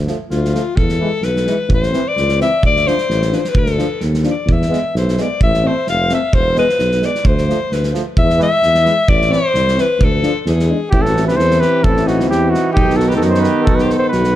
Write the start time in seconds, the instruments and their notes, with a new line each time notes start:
0.07 trombone F3, euphonium A3, snare
0.30 tuba D2, alto saxophone F4, snare
0.45 snare
0.53 trombone F3, euphonium A3, snare
0.76 tuba E2, alto saxophone A4, kick
0.89 snare
1.00 trombone E3, euphonium G#3
1.22 tuba B1, alto saxophone B4, snare
1.37 snare
1.46 trombone E3, euphonium G#3, snare
1.68 tuba A1, kick
1.74 alto saxophone C5
1.83 snare
1.91 trombone E3, euphonium C4, snare
2.08 alto saxophone D5
2.17 tuba C#2, snare
2.29 snare
2.38 trombone E3, euphonium C4, snare
2.42 alto saxophone E5
2.63 tuba D2, alto saxophone D5, kick
2.77 snare
2.85 trombone F3, euphonium D4, alto saxophone C5, snare
2.98 snare
3.09 tuba A1, snare
3.22 snare
3.30 trombone F3, euphonium D4, snare
3.35 alto saxophone B4
3.40 alto saxophone C5
3.45 snare
3.49 alto saxophone B4
3.55 tuba D2, alto saxophone A4, kick
3.66 snare
3.76 trombone F3, euphonium D4, snare
4.01 tuba D#2, snare
4.14 snare
4.23 trombone F3, euphonium D4, snare
4.30 alto saxophone D5
4.45 tuba E2, kick
4.52 alto saxophone E5
4.62 snare
4.68 trombone G#3, euphonium B3
4.73 snare
4.95 tuba B1, alto saxophone C5, snare
5.08 snare
5.16 trombone G#3, euphonium B3, snare
5.22 alto saxophone D5
5.41 tuba A1, alto saxophone E5, kick
5.54 snare
5.63 trombone A3, euphonium C4
5.67 alto saxophone C5
5.87 tuba F1, alto saxophone F5, snare
6.09 trombone A3, euphonium C4, snare
6.15 alto saxophone E5
6.33 tuba E1, alto saxophone C5, kick
6.55 trombone G#3, euphonium B3, alto saxophone B4, snare
6.69 snare
6.79 tuba B1, snare
6.92 snare
7.01 trombone G#3, euphonium B3, snare
7.05 alto saxophone D5
7.15 snare
7.24 tuba D2, alto saxophone C5, kick
7.38 snare
7.48 trombone F3, euphonium A3, snare
7.72 tuba D2, alto saxophone B4, snare
7.84 snare
7.93 trombone F3, euphonium A3, snare
8.17 tuba E2, alto saxophone E5, kick
8.30 snare
8.38 trombone E3, euphonium G#3, snare
8.43 alto saxophone E5
8.63 tuba E2, snare
8.75 snare
8.84 trombone E3, euphonium G#3, snare
9.08 tuba A1, alto saxophone D5, kick
9.22 snare
9.29 trombone E3, euphonium C4, alto saxophone C5
9.33 snare
9.53 tuba C2, snare
9.68 snare
9.75 trombone E3, euphonium C4, snare
9.81 alto saxophone B4
9.99 tuba D2, kick
10.04 alto saxophone A4
10.21 trombone F3, euphonium D4, snare
10.41 alto saxophone A4
10.46 tuba E2, alto saxophone G#4, snare
10.60 snare
10.68 trombone G#3, euphonium D4
10.90 tuba A1, trombone E3, euphonium C4, alto saxophone E4, flugelhorn G4, kick
11.02 flugelhorn A4
11.06 alto saxophone F#4, snare
11.17 snare
11.27 alto saxophone G4, flugelhorn B4, snare
11.36 tuba E2, alto saxophone A4, flugelhorn C5, snare
11.51 snare
11.60 alto saxophone G4, flugelhorn B4, snare
11.83 tuba A1, alto saxophone E4, flugelhorn A4, kick
11.97 snare
12.06 alto saxophone D#4, flugelhorn F#4, snare
12.20 snare
12.29 tuba E2, alto saxophone E4, flugelhorn G4, snare
12.50 alto saxophone D#4, flugelhorn F#4
12.54 snare
12.73 tuba B1, trombone D#3, euphonium B3, alto saxophone D#4, flugelhorn G4, kick
12.90 snare
12.96 alto saxophone F#4, flugelhorn A4, snare
13.08 alto saxophone G4, flugelhorn B4, snare
13.17 flugelhorn A4
13.21 tuba F#2, alto saxophone F#4, snare
13.28 flugelhorn C5
13.35 alto saxophone A4, snare
13.40 flugelhorn B4, snare
13.47 alto saxophone G4
13.64 alto saxophone F#4, flugelhorn A4, kick
13.68 tuba B1
13.76 flugelhorn B4, snare
13.81 alto saxophone G4, flugelhorn C5
13.90 alto saxophone A4, snare
13.95 alto saxophone A4, flugelhorn C5
14.02 alto saxophone A4
14.08 flugelhorn B4, snare
14.13 tuba B1, alto saxophone F#4
14.24 snare